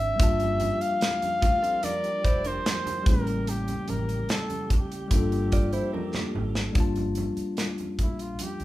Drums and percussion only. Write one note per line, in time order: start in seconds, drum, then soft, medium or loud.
0.20 kick loud
0.20 closed hi-hat loud
0.20 muted conga soft
0.40 closed hi-hat soft
0.40 muted conga soft
0.40 high conga medium
0.60 closed hi-hat medium
0.60 high conga medium
0.81 closed hi-hat medium
1.01 snare medium
1.01 closed hi-hat medium
1.01 muted conga soft
1.22 closed hi-hat medium
1.22 muted conga soft
1.22 high conga medium
1.42 kick medium
1.42 closed hi-hat medium
1.42 low conga medium
1.64 closed hi-hat medium
1.83 closed hi-hat loud
1.83 muted conga soft
1.83 high conga medium
2.04 closed hi-hat soft
2.04 muted conga soft
2.25 kick medium
2.25 closed hi-hat medium
2.45 closed hi-hat medium
2.66 snare loud
2.66 closed hi-hat medium
2.66 high conga medium
2.86 closed hi-hat medium
2.86 muted conga soft
2.86 low conga medium
3.06 kick loud
3.06 closed hi-hat medium
3.06 high conga medium
3.06 low conga medium
3.27 closed hi-hat soft
3.47 closed hi-hat medium
3.47 muted conga soft
3.68 closed hi-hat soft
3.68 high conga medium
3.88 closed hi-hat medium
3.88 high conga medium
4.09 closed hi-hat soft
4.29 snare loud
4.29 closed hi-hat medium
4.29 muted conga soft
4.50 closed hi-hat medium
4.50 muted conga soft
4.50 high conga soft
4.70 kick medium
4.70 closed hi-hat medium
4.70 low conga medium
4.92 closed hi-hat medium
5.11 kick medium
5.11 closed hi-hat loud
5.11 muted conga soft
5.11 high conga medium
5.32 closed hi-hat soft
5.32 muted conga soft
5.52 kick medium
5.52 closed hi-hat medium
5.73 closed hi-hat medium
5.94 muted conga soft
5.94 high conga medium
6.15 snare medium
6.15 muted conga soft
6.15 low conga medium
6.35 high conga medium
6.35 low conga medium
6.55 snare medium
6.75 kick loud
6.75 closed hi-hat medium
6.75 muted conga soft
6.96 closed hi-hat soft
6.96 muted conga soft
6.96 high conga medium
7.15 closed hi-hat medium
7.15 high conga medium
7.37 closed hi-hat soft
7.57 snare medium
7.57 closed hi-hat medium
7.57 muted conga soft
7.78 closed hi-hat soft
7.78 muted conga soft
7.78 high conga soft
7.99 kick medium
7.99 closed hi-hat medium
7.99 low conga medium
8.19 closed hi-hat medium
8.39 closed hi-hat loud
8.39 muted conga soft
8.39 high conga medium
8.60 closed hi-hat soft
8.60 muted conga soft